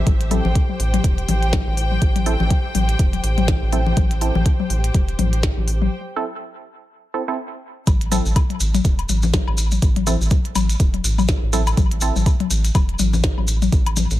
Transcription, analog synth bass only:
0.07 0.40 A1 loud
0.45 0.53 A1 medium
0.80 1.00 A1 medium
1.04 1.24 E1 medium
1.28 1.62 A1 medium
1.67 1.98 A1 loud
2.02 2.35 A1 loud
2.40 2.48 A1 medium
2.75 2.95 A1 medium
2.99 3.19 E1 medium
3.24 3.57 A1 medium
3.62 3.93 A1 loud
3.97 4.30 A1 loud
4.35 4.43 A1 medium
4.70 4.90 A1 medium
4.94 5.14 E1 medium
5.19 5.52 A1 medium
5.57 5.88 A1 loud
7.87 8.21 A1 loud
8.26 8.34 A1 medium
8.60 8.80 A1 medium
8.85 9.05 E1 medium
9.09 9.43 A1 medium
9.47 9.79 A1 loud
9.82 10.16 A1 loud
10.21 10.29 A1 medium
10.55 10.75 A1 medium
10.80 11.00 E1 medium
11.04 11.38 A1 medium
11.43 11.74 A1 loud
11.77 12.11 A1 loud
12.16 12.24 A1 medium
12.51 12.70 A1 medium
12.75 12.95 E1 medium
12.99 13.33 A1 medium
13.38 13.69 A1 loud
13.72 14.06 A1 loud
14.11 14.19 A1 medium

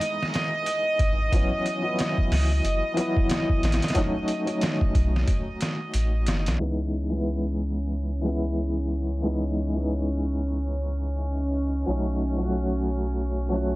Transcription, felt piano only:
0.00 1.32 E3 medium
0.00 1.34 G#3 medium
0.00 1.34 B3 medium
0.00 1.34 D#4 loud
1.32 1.80 E3 medium
1.32 1.81 F#3 medium
1.32 1.81 B3 medium
1.32 1.82 C#4 medium
1.82 2.92 E3 medium
1.82 2.93 F#3 medium
1.82 2.94 B3 medium
1.88 2.96 E4 medium
2.94 3.91 E3 medium
2.94 3.92 F#3 medium
2.98 3.94 B3 medium
2.98 3.95 E4 medium
3.94 4.43 F#3 medium
3.94 4.44 A3 medium
3.94 4.44 C#4 medium
3.94 4.45 D#4 loud
4.46 6.55 F#3 medium
4.46 6.57 A3 medium
4.51 6.58 C#4 medium
4.51 6.59 D#4 medium
6.59 7.07 E3 medium
6.59 7.08 G#3 medium
6.59 7.08 B3 medium
6.59 7.09 D#4 medium
7.10 8.20 E3 medium
7.10 8.21 G#3 medium
7.14 8.22 B3 medium
7.14 8.24 E4 medium
8.21 9.19 E3 medium
8.21 9.20 G#3 medium
8.21 9.21 B3 medium
8.28 9.22 E4 medium
9.22 9.71 E3 medium
9.22 9.72 G#3 medium
9.22 9.72 B3 medium
9.22 9.73 D#4 medium
9.74 11.83 E3 medium
9.74 11.84 G#3 medium
9.78 11.85 B3 medium
9.78 11.86 D#4 medium
11.86 12.35 F#3 medium
11.86 12.36 A3 medium
11.86 12.36 C#4 medium
11.86 12.37 D#4 medium
12.37 13.48 F#3 medium
12.37 13.49 A3 medium
12.42 13.50 C#4 medium
12.42 13.51 F#4 medium
13.49 13.76 F#3 medium
13.49 13.76 A3 medium
13.54 13.76 C#4 medium
13.54 13.76 F#4 medium

